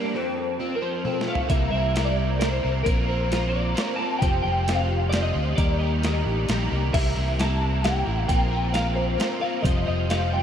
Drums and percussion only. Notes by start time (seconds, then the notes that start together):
1.05 high tom
1.21 snare
1.35 floor tom
1.50 kick, closed hi-hat
1.96 snare, closed hi-hat
2.41 snare, closed hi-hat
2.86 kick, closed hi-hat
3.32 snare, closed hi-hat
3.77 snare, closed hi-hat
4.22 kick, closed hi-hat
4.68 snare, closed hi-hat
5.13 snare, closed hi-hat
5.58 kick, closed hi-hat
6.03 snare, closed hi-hat
6.49 snare, closed hi-hat
6.94 kick, crash
7.40 snare, closed hi-hat
7.84 snare, closed hi-hat
8.29 kick, closed hi-hat
8.74 snare, closed hi-hat
9.20 snare, closed hi-hat
9.65 kick, closed hi-hat
10.10 snare, closed hi-hat